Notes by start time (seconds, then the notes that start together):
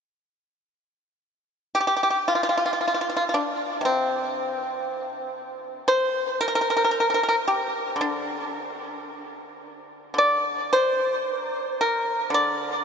1.75 G4
1.80 G4
1.87 G4
1.96 G4
2.03 G4
2.10 G4
2.28 F4
2.35 F4
2.43 F4
2.49 F4
2.57 F4
2.66 F4
2.73 F4
2.81 F4
2.88 F4
2.94 F4
3.01 F4
3.10 F4
3.17 F4
3.29 F4
3.34 D4
3.81 C3
3.85 C4
5.88 C5
6.41 A#4
6.48 A#4
6.55 A#4
6.61 A#4
6.70 A#4
6.77 A#4
6.84 A#4
6.91 A#4
7.00 A#4
7.10 A#4
7.14 A#4
7.23 A#4
7.29 A#4
7.48 G4
7.96 D3
8.01 D4
10.14 D3
10.18 D5
10.73 C5
11.27 B4
11.39 A#4
11.81 A#4
12.30 D3
12.34 D5